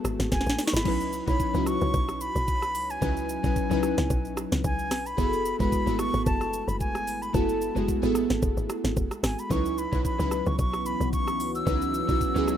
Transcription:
Already playing: G#3 A3 B3 E4 F#4 G#4 A4 B4
0.05 G#1, cross-stick, shaker
0.20 G#1, snare, shaker
0.32 F#1 G#5, kick, snare, shaker
0.41 snare
0.46 A1, snare, shaker
0.59 snare, open hi-hat, shaker
0.66 C#6, snare
0.73 G#1 B5, snare, shaker
0.84 C#2 F#3 C#4 D#4 E4 B4, kick, crash
1.00 shaker
1.13 shaker
1.26 B1 F#3 C#4 D#4 E4 C#5 B5, kick, shaker
1.40 kick, shaker
1.53 C#2 F#3 C#4 D#4 E4 F#4, shaker
1.66 C#6, cross-stick, shaker
1.81 C#2, shaker
1.94 B1, kick, shaker
2.09 cross-stick, shaker
2.21 B5, shaker
2.36 B1, shaker
2.48 kick, shaker
2.62 cross-stick, shaker
2.75 C#2, open hi-hat, shaker
2.90 G#5, shaker
3.01 C#2 F#3 C#4 D#4 E4 B4, kick, shaker
3.17 shaker
3.29 shaker
3.43 B1 F#3 C#4 D#4 E4 B4, kick, shaker
3.56 kick, shaker
3.70 C#2 F#3 C#4 D#4 E4 B4, shaker
3.83 cross-stick, shaker
3.98 C#2, snare, shaker
4.10 B1, kick, shaker
4.25 shaker
4.37 cross-stick, shaker
4.52 C#2, snare, shaker
4.64 C#2 G#5, kick, shaker
4.79 shaker
4.91 B1, cross-stick, snare, open hi-hat, shaker
5.06 B5, shaker
5.17 F#1 B3 E4 F#4 G#4 A4, kick, shaker
5.33 shaker
5.45 shaker
5.59 F#1 G#3 B3 E4 F#4 B4 B5, kick, shaker
5.72 kick, shaker
5.86 G#1 A3 B3 E4 F#4 A4, shaker
5.99 C#6, cross-stick, shaker
6.14 G#1, shaker
6.26 F#1 A5, kick, shaker
6.41 cross-stick, shaker
6.53 shaker
6.68 F#1 B5, shaker
6.80 G#5, kick, shaker
6.95 cross-stick, shaker
7.07 G#1, open hi-hat, shaker
7.22 B5, shaker
7.33 F#1 A3 B3 E4 F#4 A4 A5, kick, shaker
7.49 shaker
7.61 shaker
7.75 F#1 G#3 B3 E4 F#4 G#4, shaker
7.88 kick, shaker
8.02 G#1 B3 E4 F#4 G#4 A4, shaker
8.15 cross-stick, shaker
8.30 G#1, snare, shaker
8.42 F#1, kick, shaker
8.57 G#1, shaker
8.70 cross-stick, shaker
8.84 G#1, snare, shaker
8.97 F#1, kick, shaker
9.11 cross-stick, shaker
9.23 G#1 G#5, cross-stick, snare, open hi-hat, shaker
9.39 B5, shaker
9.49 C#2 C#3 E3 F#3 B3 C#4 D#4 E4 F#4 B4 C#6, kick, shaker
9.66 shaker
9.78 B5, shaker
9.91 B1 F#3 C#4 D#4 E4 B4, kick, shaker
10.05 B5, kick, shaker
10.18 C#2 F#3 C#4 D#4 E4 B4, shaker
10.31 cross-stick, shaker
10.46 C#2 C#6, shaker
10.59 B1 C#6, kick, shaker
10.73 cross-stick, shaker
10.86 B5, shaker
11.01 B1, shaker
11.13 C#6, kick, shaker
11.28 cross-stick, shaker
11.40 C#2, open hi-hat, shaker
11.55 E6, shaker
11.65 C#2 F#3 C#4 D#4 E4 B4, kick, shaker
11.82 shaker
11.94 shaker
12.07 B1 F#3 C#4 D#4 E4 F#4, kick, shaker
12.21 kick, shaker
12.34 C#2 F#3 C#4 D#4 E4 G#4, shaker
12.48 cross-stick, shaker

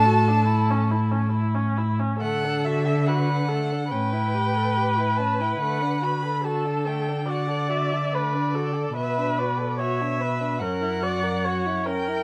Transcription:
Already playing: A2 A4 A5
0.06 F#4
0.28 D4
0.48 E4
0.70 C#4
0.91 E4
1.11 C#4
1.33 E4
1.55 C#4
1.78 E4
2.00 C#4
2.20 D3 A3 A4 F#5
2.44 D4
2.65 F#4 E5
2.88 A4
3.07 F#4 B4 F#5
3.30 D4
3.48 A3 A4
3.72 D4
3.90 A2 C#4 B4 G5
4.13 E4
4.34 G4
4.56 A4
4.76 G4
4.99 E4
5.17 C#4 A5
5.40 E4 G5
5.60 D3 A3 F#5
5.82 D4
6.02 F#4 B5
6.25 A4
6.44 F#4 A4 A5
6.65 D4
6.87 A3 G5
7.08 D4
7.28 F#4 D5 F#5
7.49 A4
7.70 F#4 E5
7.93 D4
8.13 A3 B4 D5
8.34 D4
8.54 F#4 A4
8.75 A4
8.96 B2 B3 B4 E5
9.18 D4
9.39 F#4 D5
9.59 A4
9.79 F#4 C#5 E5
10.01 D4
10.21 B3 B4
10.40 D4
10.59 F#2 C#4 A#4 F#5
10.81 E4
11.01 F#4 D5
11.23 A#4
11.45 F#4 C#5
11.66 E4
11.86 C#4 A#4 G5
12.08 E4

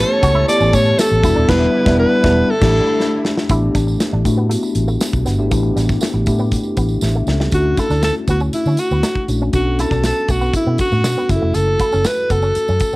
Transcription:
Already playing: E3 A3 B3 C#4 E4 G4 A4 C#5
0.23 C#2 F#4, kick, closed hi-hat, tambourine
0.35 E4
0.48 A3 B3 C#4 E4 G4 D5, muted clean electric guitar stroke, closed hi-hat, tambourine
0.60 A1 C#4, tambourine
0.73 A2 C#4 C#5, kick, closed hi-hat, tambourine
0.86 tambourine
0.98 A4, muted clean electric guitar stroke, snare, closed hi-hat, tambourine
1.11 A1
1.22 E1 D3 G3 B3 D4 E4 F#4, kick, snare, closed hi-hat, tambourine
1.36 D#1 D4
1.48 E1 G3 B3 D4 E4 B4, kick, snare, crash
1.85 E1 G3 B3 D4 E4, kick, snare
1.99 B4
2.23 E1 G3 B3 D4 E4, kick, snare
2.47 D3 G3 A3 E4 A4
2.61 A1 A3 D4 E4 G4, kick, snare, crash
3.00 snare
3.25 snare
3.37 snare
3.49 A1 A3 B3 D4 E4 G4, kick, closed hi-hat, tambourine
3.74 A1 D4, kick, snare, closed hi-hat, tambourine
3.87 muted clean electric guitar stroke, tambourine
4.00 snare, closed hi-hat, tambourine
4.12 A1 D4
4.25 A2 A3 B3 D4 E4 F#4, muted clean electric guitar stroke, kick, closed hi-hat, tambourine
4.37 B3
4.49 A3, closed hi-hat, tambourine
4.63 muted clean electric guitar stroke, tambourine
4.75 A1, closed hi-hat, tambourine
4.88 A3, tambourine
5.01 snare, closed hi-hat, tambourine
5.13 B1, kick
5.25 G1 B3, snare, closed hi-hat, tambourine
5.38 G#1 A3 B3 D4 E4 G4
5.51 A1 A3 B3 D4 E4 G4, kick, closed hi-hat, tambourine
5.63 muted clean electric guitar stroke
5.76 A1 G3, snare, closed hi-hat, tambourine
5.89 kick, snare, tambourine
6.01 A3, snare, closed hi-hat, tambourine
6.14 A1, muted clean electric guitar stroke
6.26 A2 A3 B3 D4 E4 G4, kick, closed hi-hat, tambourine
6.38 B3, tambourine
6.51 kick, closed hi-hat, tambourine
6.63 tambourine
6.77 A1 B3, kick, closed hi-hat, tambourine
6.89 tambourine
7.01 A1 G4 E5, snare, tambourine
7.15 A3
7.27 C#2 C#4 A4, muted clean electric guitar stroke, snare, tambourine
7.40 G3, snare
7.51 D2 A3 C#4 D4 E4 F4 F#4, kick, closed hi-hat, tambourine
7.60 F#4
7.65 muted clean electric guitar stroke
7.77 E4 A4, kick, snare, closed hi-hat, tambourine
7.90 D2 D4, snare, tambourine
8.03 A4, muted clean electric guitar stroke, snare, closed hi-hat, tambourine
8.28 D2 B3 F#4, kick, closed hi-hat, tambourine
8.40 C#4, tambourine
8.53 E4, closed hi-hat, tambourine
8.66 D3 C#4, tambourine
8.77 F#4, muted clean electric guitar stroke, closed hi-hat, tambourine
8.91 D2 B3, tambourine
9.03 A3, snare, closed hi-hat, tambourine
9.15 kick
9.28 A#1 A3 C#4 D4 E4 F#4, muted clean electric guitar stroke, closed hi-hat, tambourine
9.42 C#4
9.53 B1 B3 C#4 D4 F#4 A4, kick, closed hi-hat, tambourine
9.67 muted clean electric guitar stroke
9.79 E4 A4, snare, closed hi-hat, tambourine
9.91 B1 D4, kick, snare, tambourine
10.04 A4, muted clean electric guitar stroke, snare, closed hi-hat, tambourine
10.28 B1 A3 F#4, kick, closed hi-hat, tambourine
10.41 B3, tambourine
10.54 E4, muted fingered electric bass stroke, kick, closed hi-hat, tambourine
10.67 B2 B3
10.78 F#4, muted clean electric guitar stroke, kick, closed hi-hat, tambourine
10.92 A2 A3, tambourine
11.04 B2, snare, closed hi-hat, tambourine
11.18 B3
11.29 F#1 A3 C#4 E4 F#4 G#4, muted clean electric guitar stroke, kick, snare, closed hi-hat, tambourine
11.36 A4
11.42 F1 A3
11.54 F#1 A4, closed hi-hat, tambourine
11.68 muted clean electric guitar stroke
11.79 E4, kick, snare, closed hi-hat, tambourine
11.92 F#1 C#4, tambourine
12.04 B4, muted clean electric guitar stroke, snare, closed hi-hat, tambourine
12.30 F#1 B3 A4, kick, closed hi-hat, tambourine
12.42 C#4, tambourine
12.55 muted fingered electric bass stroke, closed hi-hat, tambourine
12.68 F#2 C#4, tambourine
12.80 muted clean electric guitar stroke, kick, closed hi-hat, tambourine
12.93 tambourine

